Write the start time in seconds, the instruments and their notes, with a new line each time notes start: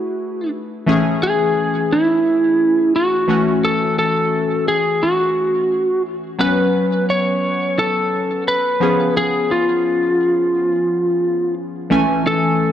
Already playing: synth keys A3 E4 F#4 G#4 B4, lead electric guitar F#4
0.86 synth keys E3 A3 C#4 G#4
1.23 lead electric guitar G#4
1.92 lead electric guitar E4
2.96 lead electric guitar F#4
3.28 synth keys E3 A3 C#4 F#4
3.65 lead electric guitar A4
3.99 lead electric guitar A4
4.68 lead electric guitar G#4
5.03 lead electric guitar F#4
6.39 synth keys F#3 B3 C#4 B4, lead electric guitar B4
7.10 lead electric guitar C#5
7.79 lead electric guitar A4
8.48 lead electric guitar B4
8.80 synth keys F3 B3 C#4 G#4
9.17 lead electric guitar G#4
9.51 lead electric guitar F4
11.90 synth keys E3 A3 C#4 G#5
12.27 lead electric guitar A4